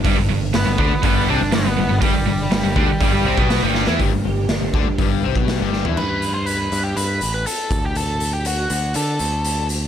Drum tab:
CC |----------------|----------------|----------------|x---------------|
HH |o---o---o---o---|o---o---o---o---|o---o---o---o---|--x-x-x-x-x-x-x-|
SD |----o-------o---|----o-------o-oo|----o-o-----o-o-|----------------|
FT |----------------|----------------|---------------o|----------------|
BD |o-----o-o-------|o-----o-o--o----|o-----o-o--o----|--------------o-|

CC |----------------|
HH |x-x-x-x-x-x-x-x-|
SD |----------------|
FT |----------------|
BD |----------------|